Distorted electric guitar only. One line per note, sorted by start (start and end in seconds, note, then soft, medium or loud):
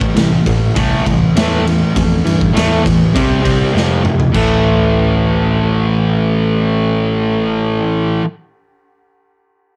0.00 0.13 A2 medium
0.00 0.13 E3 medium
0.15 0.43 A2 medium
0.15 0.43 E3 medium
0.46 0.73 A2 medium
0.46 0.74 E3 medium
0.74 1.03 A2 medium
0.74 1.04 E3 loud
0.74 1.05 A3 loud
1.06 1.33 A2 medium
1.06 1.33 E3 medium
1.36 1.64 A2 loud
1.36 1.65 E3 medium
1.36 1.65 A3 loud
1.66 1.93 A2 medium
1.66 1.93 E3 medium
1.95 2.22 A2 medium
1.95 2.23 E3 medium
2.25 2.52 A2 medium
2.25 2.53 E3 medium
2.53 2.82 A2 medium
2.53 2.83 E3 medium
2.53 2.84 A3 loud
2.83 3.12 A2 medium
2.83 3.12 E3 medium
3.14 3.41 C3 loud
3.14 3.42 G3 medium
3.14 3.43 C4 loud
3.42 3.72 C3 medium
3.42 3.72 G3 medium
3.42 3.73 C4 medium
3.73 4.02 F2 medium
3.73 4.03 C3 medium
3.73 4.03 F3 loud
4.03 4.31 F2 medium
4.03 4.32 C3 medium
4.33 8.23 A2 loud
4.33 8.24 E3 loud
4.33 8.24 A3 medium